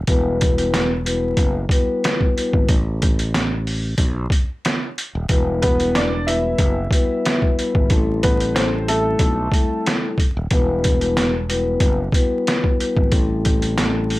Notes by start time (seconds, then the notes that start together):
0.07 E1 G3 B3 E4 F#4 B4, kick, closed hi-hat
0.41 kick, closed hi-hat
0.57 G3 B3 E4 F#4 B4, closed hi-hat
0.74 snare, closed hi-hat
1.05 G3 B3 E4 F#4 B4, closed hi-hat
1.37 F#1, kick, closed hi-hat
1.69 G3 B3 E4 F#4 B4, kick, closed hi-hat
2.04 snare, closed hi-hat
2.21 kick
2.37 G3 B3 E4 F#4 B4, closed hi-hat
2.53 G#1, kick
2.68 A1, kick, closed hi-hat
3.02 kick, closed hi-hat
3.19 closed hi-hat
3.34 snare, closed hi-hat
3.67 open hi-hat
3.98 B1, kick, closed hi-hat
4.30 kick, closed hi-hat
4.65 snare, closed hi-hat
4.98 closed hi-hat
5.15 D#1
5.29 E1 G3 B3 E4 F#4 B4, kick, closed hi-hat
5.62 B3 B4, kick, closed hi-hat
5.79 G3 B3 E4 F#4 B4, closed hi-hat
5.95 D4 D5, snare, closed hi-hat
6.27 G3 B3 E4 F#4 B4 E5, closed hi-hat
6.58 F#1, kick, closed hi-hat
6.91 G3 B3 E4 F#4 B4, kick, closed hi-hat
7.26 snare, closed hi-hat
7.42 kick
7.58 G3 B3 E4 F#4 B4, closed hi-hat
7.75 G#1, kick
7.90 A1 G3 A3 C4 E4 A4, kick, closed hi-hat
8.23 B3 B4, kick, closed hi-hat
8.40 closed hi-hat
8.55 G3 A3 C4 E4 A4 C5, snare, closed hi-hat
8.88 A3 A4, closed hi-hat
9.19 B1, kick, closed hi-hat
9.52 G3 A3 C4 E4 A4, kick, closed hi-hat
9.86 snare, closed hi-hat
10.18 kick, closed hi-hat
10.37 D#1
10.51 E1 G3 B3 E4 F#4 B4, kick, closed hi-hat
10.84 kick, closed hi-hat
11.01 G3 B3 E4 F#4 B4, closed hi-hat
11.17 snare, closed hi-hat
11.49 G3 B3 E4 F#4 B4, closed hi-hat
11.80 F#1, kick, closed hi-hat
12.12 G3 B3 E4 F#4 B4, kick, closed hi-hat
12.47 snare, closed hi-hat
12.64 kick
12.80 G3 B3 E4 F#4 B4, closed hi-hat
12.97 G#1, kick
13.12 A1 G3 A3 C4 E4 A4, kick, closed hi-hat
13.45 kick, closed hi-hat
13.62 closed hi-hat
13.78 G3 A3 C4 E4 A4, snare, closed hi-hat
14.10 open hi-hat